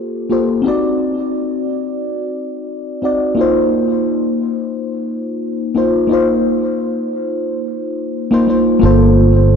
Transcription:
0.00 0.25 A#3 medium
0.00 0.26 F4 medium
0.00 0.27 G4 medium
0.00 0.27 A4 medium
0.00 0.28 C5 medium
0.29 0.60 A#3 medium
0.29 0.61 F4 medium
0.29 0.61 G4 medium
0.29 0.61 A4 medium
0.29 0.62 C5 medium
0.62 2.98 C4 medium
0.62 2.99 D#4 medium
0.62 3.00 F#4 medium
0.68 3.01 D5 medium
3.02 3.33 C4 medium
3.02 3.33 D#4 medium
3.02 3.34 F#4 medium
3.02 3.34 D5 medium
3.35 5.71 A#3 medium
3.35 5.72 D#4 medium
3.39 5.73 F4 medium
3.39 5.74 C5 medium
5.75 6.06 A#3 medium
5.75 6.06 D#4 medium
5.75 6.07 F4 medium
5.75 6.07 C5 medium
6.07 8.28 A#3 medium
6.07 8.28 D#4 medium
6.07 8.29 F4 medium
6.13 8.30 C5 medium
8.31 8.44 A#3 medium
8.31 8.45 D#4 medium
8.31 8.45 F4 medium
8.31 8.46 C5 medium
8.47 8.78 A#3 medium
8.47 8.79 D#4 medium
8.47 8.79 F4 medium
8.47 8.80 C5 medium
8.79 9.56 G1 medium
8.79 9.56 A#3 medium
8.79 9.56 F4 medium
8.83 9.56 A4 medium
8.83 9.56 C5 medium

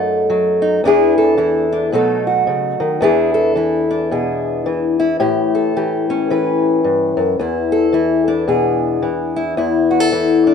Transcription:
0.00 0.80 F#2 medium
0.00 0.27 F#3 medium
0.00 0.83 A3 medium
0.00 0.60 D#4 medium
0.00 0.80 A4 medium
0.30 0.80 F#3 medium
0.62 0.80 D#4 medium
0.84 1.92 E2 medium
0.84 1.36 E3 medium
0.84 1.71 D4 medium
0.84 1.37 E4 medium
0.84 1.17 G#4 medium
1.18 1.90 A4 medium
1.37 1.92 E3 medium
1.37 1.89 E4 medium
1.73 1.90 D4 medium
1.92 2.47 B2 medium
1.92 2.99 F#3 medium
1.92 3.02 A3 medium
1.92 3.00 D#4 soft
1.92 2.26 A4 medium
2.27 3.02 F#4 medium
2.47 2.80 C#3 medium
2.80 3.01 D#3 medium
3.01 5.19 E2 medium
3.01 3.55 E3 medium
3.01 3.89 D4 medium
3.01 3.57 E4 medium
3.01 3.34 G#4 medium
3.34 4.11 A4 medium
3.56 4.65 E3 medium
3.56 4.99 E4 medium
3.91 5.19 D4 medium
4.11 4.66 B2 medium
4.11 5.19 G#4 medium
4.66 5.76 E3 medium
5.00 5.20 E4 medium
5.20 6.84 A2 medium
5.20 5.75 G4 medium
5.55 6.31 A4 medium
5.76 6.30 E3 medium
5.76 7.38 G4 medium
6.10 7.38 C#4 medium
6.30 7.93 E3 medium
6.30 7.38 B4 medium
6.84 7.17 G2 medium
7.17 7.39 F#2 medium
7.39 9.56 E2 medium
7.39 7.94 E4 medium
7.72 8.48 A4 medium
7.93 9.02 E3 medium
7.93 9.36 E4 medium
8.28 9.57 D4 medium
8.48 9.04 B2 medium
8.48 9.56 G#4 medium
9.02 10.12 E3 medium
9.36 9.58 E4 medium
9.57 10.54 E2 medium
9.57 10.13 E4 medium
9.91 10.00 F#4 medium
10.00 10.54 A4 soft
10.12 10.54 E3 medium
10.12 10.54 E4 medium
10.47 10.54 D4 medium

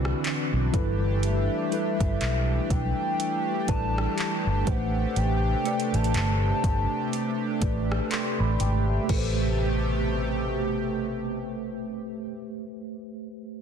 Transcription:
0.00 0.12 C2 loud
0.00 0.73 D3 medium
0.00 4.63 E3 medium
0.00 0.70 C4 medium
0.00 0.73 C4 medium
0.00 9.05 D4 medium
0.00 0.72 E4 medium
0.00 0.69 F#4 loud
0.00 0.74 F#4 medium
0.00 0.74 B4 medium
0.00 0.74 D5 medium
0.00 1.19 E5 medium
0.05 cross-stick loud
0.24 clap loud
0.24 closed hi-hat medium
0.53 0.69 B1 loud
0.72 1.48 G1 loud
0.72 1.55 G3 medium
0.72 9.06 A3 medium
0.72 1.55 E4 medium
0.72 9.06 G4 medium
0.72 1.56 A4 medium
0.72 1.56 B4 loud
0.72 kick loud
0.72 closed hi-hat medium
1.23 2.72 E5 loud
1.23 closed hi-hat medium
1.70 3.06 G3 medium
1.70 3.06 E4 medium
1.70 3.07 A4 medium
1.70 3.07 B4 medium
1.70 closed hi-hat soft
2.00 2.16 G1 medium
2.00 kick loud
2.00 closed hi-hat medium
2.21 2.58 B1 medium
2.21 clap loud
2.21 closed hi-hat medium
2.70 2.92 B1 medium
2.70 3.69 G5 loud
2.70 kick loud
2.70 closed hi-hat medium
3.20 closed hi-hat medium
3.67 4.06 A1 loud
3.67 4.66 G3 medium
3.67 4.67 E4 medium
3.67 4.67 A4 medium
3.67 5.12 B4 medium
3.67 4.68 D5 medium
3.67 4.70 A5 loud
3.67 kick medium
3.67 closed hi-hat medium
3.98 cross-stick loud
4.18 clap loud
4.18 closed hi-hat medium
4.47 4.62 G1 medium
4.66 5.04 A1 loud
4.66 9.06 C3 medium
4.66 5.48 A3 medium
4.66 5.49 G4 medium
4.66 5.49 B4 medium
4.66 5.50 C5 medium
4.66 5.19 F#5 loud
4.66 kick loud
4.66 closed hi-hat medium
5.16 5.53 A1 loud
5.16 5.96 G5 loud
5.16 closed hi-hat medium
5.64 6.99 A3 medium
5.64 7.00 G4 medium
5.64 8.10 A4 medium
5.64 7.00 B4 medium
5.64 7.01 D5 medium
5.64 closed hi-hat medium
5.80 closed hi-hat medium
5.94 6.16 A1 medium
5.94 7.91 A5 loud
5.94 closed hi-hat medium
6.04 closed hi-hat medium
6.14 6.52 G1 loud
6.14 clap loud
6.14 closed hi-hat medium
6.64 6.85 G1 loud
6.64 kick loud
6.64 closed hi-hat medium
7.13 closed hi-hat medium
7.61 7.99 A1 medium
7.61 8.60 A3 medium
7.61 8.61 G4 medium
7.61 8.61 B4 medium
7.61 8.62 D5 medium
7.61 kick medium
7.61 closed hi-hat medium
7.92 cross-stick loud
8.11 9.09 A4 medium
8.11 8.38 C6 medium
8.11 clap loud
8.11 closed hi-hat medium
8.40 8.55 A1 medium
8.40 8.60 B5 medium
8.60 8.97 G#1 loud
8.60 8.88 G5 medium
8.60 closed hi-hat medium
8.90 9.36 E5 medium
9.03 12.20 A3 medium
9.08 12.26 A1 loud
9.08 12.26 B2 medium
9.08 12.26 C3 medium
9.08 12.26 A3 medium
9.08 12.24 G4 medium
9.08 12.26 G4 loud
9.08 12.27 A4 medium
9.08 kick loud
9.08 crash medium
9.12 12.29 B4 medium
9.17 12.33 C5 medium

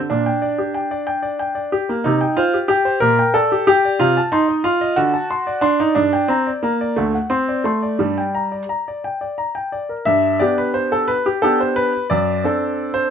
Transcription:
0.00 0.10 D3 soft
0.10 0.26 A#2 medium
0.10 1.69 D4 medium
0.26 0.44 G5 soft
0.42 0.60 D5 medium
0.58 0.76 G4 soft
0.74 0.92 G5 soft
0.91 1.09 D5 medium
1.07 1.25 G5 medium
1.23 1.41 D5 soft
1.39 1.57 G5 medium
1.55 1.73 D5 soft
1.72 1.90 G4 medium
1.89 2.06 A#3 soft
2.04 2.21 C3 medium
2.04 2.37 D#4 medium
2.21 2.38 G5 medium
2.37 2.56 F4 medium
2.37 2.55 C5 medium
2.54 2.67 G4 soft
2.68 2.98 G4 medium
2.68 2.87 G5 medium
2.85 3.02 C5 medium
3.00 3.18 A#2 medium
3.00 3.34 A#4 loud
3.19 3.36 G5 soft
3.34 3.67 A4 medium
3.34 3.52 D5 medium
3.52 3.66 G4 soft
3.67 4.00 G4 medium
3.67 3.85 G5 medium
3.85 4.01 D5 soft
3.99 4.16 C3 medium
3.99 4.19 F4 medium
4.17 4.34 A5 medium
4.32 4.61 D#4 medium
4.32 4.50 C6 medium
4.48 4.66 D#5 soft
4.64 4.97 F4 medium
4.64 4.82 C6 soft
4.81 4.97 D#5 medium
4.96 5.13 D3 medium
4.96 5.63 F#4 medium
5.14 5.31 A5 soft
5.31 5.48 C6 medium
5.47 5.64 D5 medium
5.61 5.79 D4 medium
5.61 5.80 C6 medium
5.80 5.97 D#4 medium
5.80 5.97 D5 soft
5.95 6.13 G2 medium
5.95 6.29 D4 medium
6.13 6.31 G5 medium
6.28 6.49 C4 medium
6.28 6.47 A#5 medium
6.47 6.64 D5 soft
6.63 6.97 A#3 medium
6.63 6.81 A#5 soft
6.81 6.97 D5 soft
6.96 7.14 D2 medium
6.96 7.17 A3 medium
7.14 7.32 F#5 soft
7.30 7.61 C4 medium
7.30 7.49 C6 soft
7.48 7.67 D5 soft
7.64 8.00 A3 medium
7.64 7.84 C6 soft
7.82 8.00 D5 soft
7.99 8.17 G2 medium
7.99 8.62 G3 medium
8.18 8.36 G5 soft
8.35 8.54 A#5 soft
8.52 8.71 D5 soft
8.69 8.88 A#5 soft
8.88 9.06 D5 soft
9.04 9.23 G5 soft
9.21 9.40 D5 soft
9.38 9.57 A#5 soft
9.55 9.74 G5 soft
9.72 9.91 D5 soft
9.89 10.07 A#4 soft
10.05 10.40 G2 medium
10.05 10.40 E5 medium
10.40 11.13 B3 soft
10.40 11.14 D4 soft
10.40 11.14 G4 soft
10.40 10.57 D5 medium
10.58 10.75 B4 medium
10.74 10.91 C5 medium
10.92 11.09 A4 medium
11.08 11.25 B4 medium
11.26 11.42 G4 medium
11.42 11.91 B3 soft
11.42 11.91 D4 soft
11.42 11.92 G4 medium
11.42 11.59 A4 medium
11.60 11.76 C5 medium
11.76 12.06 B4 medium
12.10 12.42 F#2 medium
12.10 12.89 D5 medium
12.44 13.10 C4 soft
12.44 13.10 D4 medium
12.44 13.10 A4 medium
12.94 13.10 C5 medium

